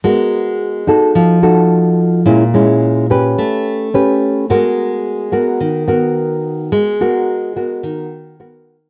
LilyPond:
\new Staff \with { instrumentName = "Nylon-string guitar" } { \time 4/4 \key gis \minor \tempo 4 = 108 << { <b fis' ais'>4. <dis' fis' a'>4 <ees' ges' a'>4. | <gis cis' e'>8 <gis cis' e'>4 <cis' g' b'>4. <cis' g' b'>4 | <b fis' ais'>4. <b fis' ais'>4 <b fis' ais'>4.~ | <b fis' ais'>8 <b fis' ais'>4 <b fis' ais'>4. <b fis' ais'>8 r8 | } \\ { gis2 f2 | ais,2 a2 | gis2 dis2 | gis2 dis2 | } >> }